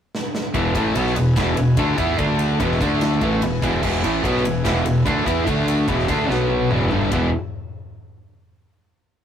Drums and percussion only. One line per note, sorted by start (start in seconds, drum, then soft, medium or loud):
0.15 snare medium
0.35 snare medium
0.54 kick loud
0.54 ride medium
0.75 kick loud
0.75 ride medium
0.95 ride loud
1.06 snare soft
1.16 ride medium
1.36 kick loud
1.36 snare loud
1.36 ride loud
1.57 ride medium
1.77 kick loud
1.77 ride loud
1.98 kick loud
1.98 ride medium
2.19 kick loud
2.19 ride loud
2.39 ride medium
2.60 kick loud
2.60 ride loud
2.72 snare soft
2.81 kick loud
2.81 ride medium
3.01 snare loud
3.01 ride loud
3.21 kick loud
3.21 ride medium
3.42 ride loud
3.62 kick loud
3.62 ride medium
3.83 kick loud
3.83 crash loud
4.04 ride medium
4.24 kick loud
4.24 ride loud
4.37 snare soft
4.45 ride medium
4.65 kick loud
4.65 snare loud
4.65 ride loud
4.86 ride medium
5.06 kick loud
5.06 ride loud
5.26 kick loud
5.26 ride medium
5.47 kick loud
5.47 ride loud
5.68 ride medium
5.88 kick loud
5.88 ride medium
5.99 snare soft
6.08 kick loud
6.08 ride medium
6.30 snare medium
6.50 high tom medium
6.71 mid tom medium
6.81 mid tom medium
6.91 floor tom loud
7.01 floor tom medium
7.12 kick loud
7.12 ride bell medium